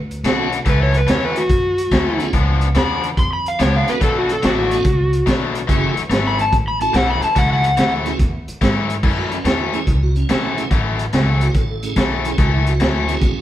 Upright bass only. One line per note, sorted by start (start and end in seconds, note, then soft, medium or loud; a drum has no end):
0.00 0.23 D2 medium
0.23 0.65 B1 medium
0.66 1.07 C#2 medium
1.07 1.48 E2 medium
1.49 1.90 F#2 medium
1.92 2.32 D2 medium
2.33 2.74 C#2 medium
2.75 3.16 E2 medium
3.17 3.58 F2 medium
3.59 3.86 C#2 medium
3.88 muted upright bass stroke soft
4.01 4.42 B1 medium
4.43 4.84 A1 medium
4.85 5.26 C#2 medium
5.27 5.68 B1 medium
5.69 5.95 F#1 medium
5.97 muted upright bass stroke soft
6.10 6.51 G#1 loud
6.52 6.93 A1 medium
6.94 7.21 B1 medium
7.22 muted upright bass stroke soft
7.36 7.77 C#2 medium
7.78 8.18 D2 medium
8.20 8.46 E2 medium
8.48 muted upright bass stroke soft
8.61 9.02 G#2 medium
9.03 9.44 F#2 medium
9.45 9.86 E2 medium
9.87 10.28 C#2 medium
10.29 10.70 B1 medium
10.71 11.11 A1 medium
11.13 11.53 C#2 medium
11.54 11.95 A1 medium
11.96 12.37 B1 medium
12.38 12.79 C#2 medium
12.80 13.21 D2 medium
13.22 13.41 E2 medium